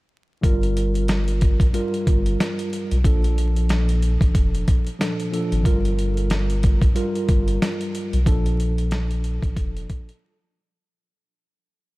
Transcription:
0.41 G1 G2 G3 F4 A#4, kick, closed hi-hat
0.63 closed hi-hat
0.77 closed hi-hat
0.95 closed hi-hat
1.08 snare, closed hi-hat
1.28 closed hi-hat
1.41 kick, closed hi-hat
1.60 A#1, kick, closed hi-hat
1.72 G2 G3 F4 A#4, closed hi-hat
1.94 closed hi-hat
2.07 G1, kick, closed hi-hat
2.26 closed hi-hat
2.40 snare, closed hi-hat
2.59 closed hi-hat
2.73 closed hi-hat
2.91 B1, closed hi-hat
3.04 A#1 A#2 F3 D4 A4, kick, closed hi-hat
3.24 closed hi-hat
3.38 closed hi-hat
3.56 closed hi-hat
3.69 snare, closed hi-hat
3.89 closed hi-hat
4.02 closed hi-hat
4.21 A1, kick, closed hi-hat
4.35 F1, kick, closed hi-hat
4.55 closed hi-hat
4.68 kick, closed hi-hat
4.87 closed hi-hat
4.98 A#2 F3 D4 A4, snare, closed hi-hat
5.20 closed hi-hat
5.31 A#2 F3 D4 A4, closed hi-hat
5.52 G#1, closed hi-hat
5.63 G1 G2 G3 F4 A#4, kick, closed hi-hat
5.85 closed hi-hat
5.99 closed hi-hat
6.17 closed hi-hat
6.30 snare, closed hi-hat
6.50 closed hi-hat
6.63 kick, closed hi-hat
6.82 A#1, kick, closed hi-hat
6.94 G2 G3 F4 A#4, closed hi-hat
7.16 closed hi-hat
7.29 G1, kick, closed hi-hat
7.48 closed hi-hat
7.62 snare, closed hi-hat
7.81 closed hi-hat
7.95 closed hi-hat
8.13 B1, closed hi-hat
8.25 A#1 A#2 F3 D4 A4, kick, closed hi-hat
8.46 closed hi-hat
8.60 closed hi-hat
8.78 closed hi-hat
8.91 snare, closed hi-hat
9.11 closed hi-hat
9.24 closed hi-hat
9.42 A1, kick, closed hi-hat
9.56 F1, kick, closed hi-hat
9.77 closed hi-hat
9.89 kick, closed hi-hat
10.09 closed hi-hat

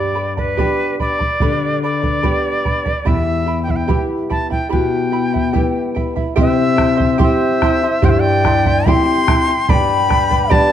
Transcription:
Already playing: G2 G4 B4 D5 G5 B5
0.15 B4 D5 G5 B5
0.37 B4 D5 B5, bombo low
0.57 B3 D4 G4 B4 D5 G5 B5, bombo low
1.00 B4 D5 G5 B5, bombo low
1.19 B4 D5 B5, bombo low
1.40 D3 G4 B4 D5 G5 B5, bombo low
1.83 B4 D5 G5 B5
2.02 B4 D5 B5, bombo low
2.23 B3 D4 G4 B4 D5 G5 B5, bombo low
2.64 B4 D5 G5 B5, bombo low
2.86 B4 D5 B5, bombo low
3.05 E2 E4 G4 E5 G5 B5, bombo low
3.46 E4 E5 G5 B5
3.63 G5
3.67 E4 E5 B5, bombo low
3.76 G5
3.88 B3 E4 G4 E5 G5 B5, bombo low
4.30 E4 E5 G5 A5 B5, bombo low
4.50 E4 E5 G5 B5, bombo low
4.69 B2 E4 G4 E5 G5 B5, bombo low
5.12 E4 E5 G5 B5
5.33 E4 E5 B5, bombo low
5.53 B3 E4 G4 E5 G5 B5, bombo low
5.95 E4 E5 G5 B5, bombo low
6.16 E4 E5 B5, bombo low
6.36 C3 E4 G4 C5 E5 G5 C6, bombo low
6.41 E5
6.76 E4 E5 G5 C6, bombo rim, bombo low
6.97 E4 E5 C6, bombo low
7.18 C4 E4 G4 C5 E5 G5 C6, bombo low
7.23 E5
7.62 E4 E5 G5 C6, bombo rim, bombo low
7.83 E4 E5 C6
8.02 G2 E4 G4 C5 E5 G5 C6, bombo low
8.10 C5 E5
8.18 D5 G5
8.44 E4 E5 G5 C6, bombo rim, bombo low
8.65 E4 E5 C6, bombo low
8.86 C4 E4 G4 E5 G5 B5 C6, bombo low
9.28 E4 E5 G5 C6, bombo rim, bombo low
9.48 E4 E5 C6
9.69 G2 G4 B4 D5 G5 B5, bombo low
10.09 B4 D5 G5 B5, bombo rim, bombo low
10.30 B4 D5 B5, bombo low
10.50 B3 D4 G4 B4 D5 G5 A5 B5, bombo low

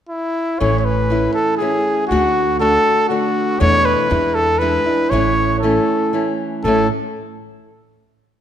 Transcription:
0.09 E4
0.60 A1 A2 E3 A3 C#4 E4 C#5
0.79 C#5
0.85 B4
1.10 E3 A3 C#4 E4
1.34 A4
1.57 E3 A3 C#4 G#4
1.62 E4
2.08 D2 D3 A3 D4 F#4
2.12 F#4
2.60 D3 A3 D4 F#4 A4
3.08 D3 A3 D4 F#4
3.60 E2 B2 E3 A3 D4 E4 C#5
3.85 B4
4.10 E2 E3 G#3 D4 E4
4.35 A4
4.59 E3 G#3 D4 E4 B4
4.86 E3 G#3 D4 E4
5.10 A1 A2 E3 A3 C#4 E4 C#5
5.60 E3 A3 C#4 A4
5.64 E4
6.13 E3 A3 C#4 E4
6.64 A1 A2 E3 A3 C#4 E4 A4

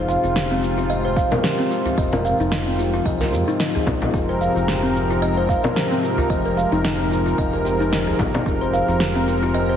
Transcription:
Already playing: F1 G#2 C3 F3 C4 F4
0.09 F5, cabasa
0.24 F1 F4, cabasa
0.36 G4, snare, cabasa
0.51 C4, cabasa
0.63 F4, cabasa
0.78 F4, cabasa
0.90 D#5, cabasa
1.05 C5, cabasa
1.16 F5, kick, cabasa
1.32 A#4, low conga, cabasa
1.43 G4, snare, cabasa
1.59 C4, cabasa
1.71 F4, cabasa
1.85 F4, udu, cabasa
1.98 F1 D#5, kick, cabasa
2.13 A#4, low conga, cabasa
2.25 F5, cabasa
2.40 F1 D#4, cabasa
2.52 D#5, snare, cabasa
2.67 C4, cabasa
2.79 F4, cabasa
2.94 F4, cabasa
3.05 C2 D#5, kick, cabasa
3.21 A#4, snare, udu, cabasa
3.33 F2 G4, cabasa
3.48 D#4, cabasa
3.60 D#5, snare, cabasa
3.75 G#4, udu, cabasa
3.87 C2 F4, kick, low conga, cabasa
4.02 F4, low conga, cabasa
4.14 F1 F4 A#4, kick, cabasa
4.29 C5, cabasa
4.41 F5, cabasa
4.56 F1 F4, cabasa
4.68 G4, snare, cabasa
4.83 C4, cabasa
4.95 F4, cabasa
5.11 F4, cabasa
5.22 D#5, cabasa
5.37 C5, cabasa
5.49 F5, kick, cabasa
5.64 A#4, low conga, cabasa
5.76 G4, snare, cabasa
5.91 C4, cabasa
6.03 F4, cabasa
6.18 F4, udu, cabasa
6.30 F1 D#5, kick, cabasa
6.45 A#4, cabasa
6.57 F5, cabasa
6.72 F1 D#4, cabasa
6.84 D#5, snare, cabasa
7.00 C4, cabasa
7.11 F4, cabasa
7.26 F4, cabasa
7.38 F1 D#5, kick, cabasa
7.53 A#4, udu, cabasa
7.65 G4, cabasa
7.80 D#4, cabasa
7.92 D#5, snare, cabasa
8.07 G#4, udu, cabasa
8.19 G#1 F4, kick, low conga, cabasa
8.34 F4, low conga, cabasa
8.46 F1 F4, kick, cabasa
8.61 C5, cabasa
8.73 F5, cabasa
8.88 F1 F4, cabasa
9.00 G4, snare, cabasa
9.15 C4, cabasa
9.28 F4, cabasa
9.43 F4, cabasa
9.54 D#5, cabasa
9.69 C5, cabasa

